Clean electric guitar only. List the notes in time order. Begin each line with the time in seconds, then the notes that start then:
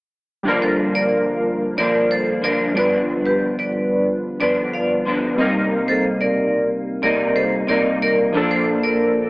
0.44 G2 D3 F3 A#3
0.49 D4
1.77 D3 F3 A#3 D4
2.42 D3 F3 A#3 D4
2.75 D3 F3 B3 D4
2.79 G2
4.40 D3 F3 B3 D4
5.05 D3 F3 B3 D4
5.38 C3 G3 A#3 D#4
7.02 C3 G3 A#3 D#4
7.67 C3 G3 A#3 D#4
8.33 A#2 F3
8.37 D4